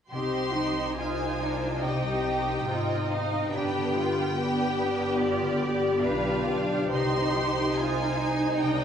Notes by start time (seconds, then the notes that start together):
0.10 C2 C3 C4 D#4 G4 C5 C6
0.33 C4
0.55 G3 D#4
0.77 D#4
0.96 D#4 F4 C5 G#5
1.19 G4
1.40 D4 D#4 C5
1.61 D#4
1.81 C3 C4 D#4 G4 D#5 G5
2.04 C4
2.26 G3
2.48 D#4
2.68 G#1 D#4 F4 C5 D#5
2.90 G4
3.10 D#4 C5 F5
3.32 D#4
3.50 G1 G2 B3 D4 G4 B4 G5
3.74 D3
3.94 G3 F4
4.16 F4
4.36 B3 D4 G4 B4
4.59 G4
4.79 B4
5.00 F4
5.19 G2 F4 D5
5.41 D3
5.62 G4
5.84 F4
6.02 B1 D4 F4 G4 B4 F5
6.26 G4
6.48 D4 B4
6.72 F4
6.93 C2 C3 D#4 C5 C6
7.15 C4
7.36 G3 G4
7.58 D#4
7.76 D#4 F4 C5 G#5
8.00 G4
8.19 D#4 C5
8.42 D#4
8.58 C3 D4 D#5 G5